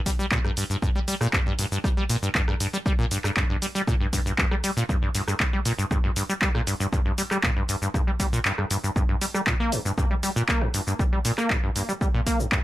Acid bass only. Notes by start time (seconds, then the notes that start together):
0.06 G3
0.19 G3
0.32 A#2
0.45 G2
0.57 G2
0.70 G2
0.82 G2
0.95 G3
1.08 G3
1.21 A#2
1.33 G2
1.46 G2
1.59 G2
1.72 G2
1.84 G3
1.97 G3
2.09 A#2
2.23 G2
2.35 G2
2.48 G2
2.60 G2
2.73 G3
2.86 G3
2.99 A#2
3.11 G2
3.24 G2
3.37 G2
3.50 G2
3.62 G3
3.75 G3
3.88 A#2
4.01 G2
4.13 G2
4.26 G2
4.38 G2
4.51 G3
4.64 G3
4.77 A#2
4.89 G2
5.02 G2
5.15 G2
5.28 G2
5.40 G3
5.53 G3
5.66 A#2
5.79 G2
5.91 G2
6.04 G2
6.16 G2
6.29 G3
6.42 G3
6.55 A#2
6.67 G2
6.80 G2
6.93 G2
7.06 G2
7.18 G3
7.31 G3
7.44 A#2
7.57 G2
7.69 G2
7.82 G2
7.94 G2
8.07 G3
8.20 G3
8.33 A#2
8.45 G2
8.58 G2
8.71 G2
8.84 G2
8.96 G2
9.09 G2
9.22 G3
9.35 G3
9.47 A#2
9.60 A#3
9.72 G2
9.85 G2
9.98 G2
10.11 G3
10.23 G3
10.36 A#2
10.49 A#3
10.62 G2
10.74 G2
10.87 G2
11.00 G3
11.13 G3
11.25 A#2
11.38 A#3
11.50 G2
11.63 G2
11.76 G2
11.89 G3
12.01 G3
12.14 A#2
12.27 A#3
12.40 G2
12.52 G2